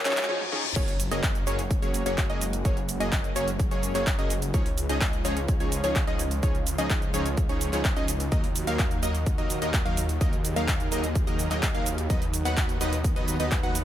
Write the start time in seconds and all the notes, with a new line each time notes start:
Already playing: C#3 F3 G#3 C#4 F4, reverse cymbal, riser
0.05 C#2 F3 C#4 D#4 G#4 C#5, clap, open hi-hat
0.11 clap
0.17 clap, closed hi-hat
0.23 clap
0.29 F3 C#4 D#4 G#4 C#5
0.41 high tom
0.52 F3 C#4 D#4 G#4 C#5, mid tom
0.64 mid tom
0.76 F#1 C#3 F#3 G#3 A#3 C#4 F#4 G#4 C#5, kick, closed hi-hat, crash, impact, shaker
0.88 open hi-hat, shaker
1.00 open hi-hat, shaker
1.11 F#1 F#3 A#3 C#4 G#4 D#5, closed hi-hat, shaker
1.23 kick, clap, closed hi-hat, shaker
1.35 closed hi-hat, shaker
1.47 F#1 F#3 A#3 C#4 G#4 C#5, open hi-hat, shaker
1.59 closed hi-hat, shaker
1.71 kick, closed hi-hat, shaker
1.82 F#1 F#3 A#3 C#4 G#4 C#5, closed hi-hat, shaker
1.94 open hi-hat, shaker
2.06 F#1 F#3 A#3 C#4 G#4 C#5, closed hi-hat, shaker
2.18 kick, clap, closed hi-hat, shaker
2.30 F#1 F#3 A#3 C#4 G#4 D#5, closed hi-hat, shaker
2.41 open hi-hat, shaker
2.53 closed hi-hat, shaker
2.65 F#1 F#3 A#3 C#4 G#4 C#5, kick, closed hi-hat, shaker
2.77 closed hi-hat, shaker
2.89 open hi-hat, shaker
3.00 F#1 F#3 A#3 C#4 G#4 D#5, closed hi-hat, shaker
3.12 kick, clap, closed hi-hat, shaker
3.24 closed hi-hat, shaker
3.36 F#1 F#3 A#3 C#4 G#4 C#5, open hi-hat, shaker
3.48 closed hi-hat, shaker
3.60 kick, closed hi-hat, shaker
3.71 F#1 F#3 A#3 C#4 G#4 C#5, closed hi-hat, shaker
3.83 open hi-hat, shaker
3.95 F#1 F#3 A#3 C#4 G#4 C#5, clap, closed hi-hat, shaker
4.07 kick, clap, closed hi-hat, shaker
4.18 F#1 F#3 A#3 C#4 G#4 D#5, closed hi-hat, shaker
4.30 open hi-hat, shaker
4.42 closed hi-hat, shaker
4.54 C#2 F3 G#3 C#4 D#4 F4 G#4 C#5, kick, closed hi-hat, shaker
4.66 open hi-hat, shaker
4.78 open hi-hat, shaker
4.89 C#2 F3 C#4 D#4 G#4 D#5, closed hi-hat, shaker
5.01 kick, clap, closed hi-hat, shaker
5.13 closed hi-hat, shaker
5.25 C#2 F3 C#4 D#4 G#4 C#5, open hi-hat, shaker
5.37 closed hi-hat, shaker
5.48 kick, closed hi-hat, shaker
5.60 C#2 F3 C#4 D#4 G#4 C#5, closed hi-hat, shaker
5.72 open hi-hat, shaker
5.84 C#2 F3 C#4 D#4 G#4 C#5, closed hi-hat, shaker
5.96 kick, clap, closed hi-hat, shaker
6.07 C#2 F3 C#4 D#4 G#4 D#5, closed hi-hat, shaker
6.19 open hi-hat, shaker
6.31 closed hi-hat, shaker
6.43 C#2 F3 C#4 D#4 G#4 C#5, kick, closed hi-hat, shaker
6.55 closed hi-hat, shaker
6.67 open hi-hat, shaker
6.78 C#2 F3 C#4 D#4 G#4 D#5, closed hi-hat, shaker
6.90 kick, clap, closed hi-hat, shaker
7.02 closed hi-hat, shaker
7.14 C#2 F3 C#4 D#4 G#4 C#5, open hi-hat, shaker
7.26 closed hi-hat, shaker
7.37 kick, closed hi-hat, shaker
7.49 C#2 F3 C#4 D#4 G#4 C#5, closed hi-hat, shaker
7.61 open hi-hat, shaker
7.73 C#2 F3 C#4 D#4 G#4 C#5, clap, closed hi-hat, shaker
7.85 kick, clap, closed hi-hat, shaker
7.96 C#2 F3 C#4 D#4 G#4 D#5, closed hi-hat, shaker
8.08 open hi-hat, shaker
8.20 closed hi-hat, shaker
8.32 D#2 A#2 D#3 F#3 A#3 D#4 F#4 A#4 D#5, kick, closed hi-hat, shaker
8.44 open hi-hat, shaker
8.56 open hi-hat, shaker
8.67 D#2 F#3 A#3 D#4 A#4 F5, closed hi-hat, shaker
8.79 kick, clap, closed hi-hat, shaker
8.91 closed hi-hat, shaker
9.03 D#2 F#3 A#3 D#4 A#4 D#5, open hi-hat, shaker
9.15 closed hi-hat, shaker
9.26 kick, closed hi-hat, shaker
9.38 D#2 F#3 A#3 D#4 A#4 D#5, closed hi-hat, shaker
9.50 open hi-hat, shaker
9.62 D#2 F#3 A#3 D#4 A#4 D#5, closed hi-hat, shaker
9.74 kick, clap, closed hi-hat, shaker
9.85 D#2 F#3 A#3 D#4 A#4 F5, closed hi-hat, shaker
9.97 open hi-hat, shaker
10.09 closed hi-hat, shaker
10.21 D#2 F#3 A#3 D#4 G#4 A#4 D#5, kick, closed hi-hat, shaker
10.33 closed hi-hat, shaker
10.45 open hi-hat, shaker
10.56 D#2 F#3 A#3 D#4 A#4 F5, closed hi-hat, shaker
10.68 kick, clap, closed hi-hat, shaker
10.80 closed hi-hat, shaker
10.92 D#2 F#3 A#3 D#4 A#4 D#5, open hi-hat, shaker
11.04 closed hi-hat, shaker
11.15 kick, closed hi-hat, shaker
11.27 D#2 F#3 A#3 D#4 A#4 D#5, closed hi-hat, shaker
11.39 open hi-hat, shaker
11.51 D#2 F#3 A#3 D#4 A#4 D#5, clap, closed hi-hat, shaker
11.63 kick, clap, closed hi-hat, shaker
11.74 D#2 F#3 A#3 D#4 A#4 F5, closed hi-hat, shaker
11.86 open hi-hat, shaker
11.98 closed hi-hat, shaker
12.10 D#2 B2 F#3 B3 D#4 F#4 B4 D#5, kick, closed hi-hat, shaker
12.22 open hi-hat, shaker
12.34 open hi-hat, shaker
12.45 D#2 F#3 B3 D#4 B4 F#5, closed hi-hat, shaker
12.57 kick, clap, closed hi-hat, shaker
12.69 closed hi-hat, shaker
12.81 D#2 F#3 B3 D#4 B4 D#5, open hi-hat, shaker
12.93 closed hi-hat, shaker
13.04 kick, closed hi-hat, shaker
13.16 D#2 F#3 B3 D#4 B4 D#5, closed hi-hat, shaker
13.28 open hi-hat, shaker
13.40 D#2 F#3 B3 D#4 B4 D#5, closed hi-hat, shaker
13.52 kick, clap, closed hi-hat, shaker
13.63 D#2 F#3 B3 D#4 B4 F#5, closed hi-hat, shaker
13.75 open hi-hat, shaker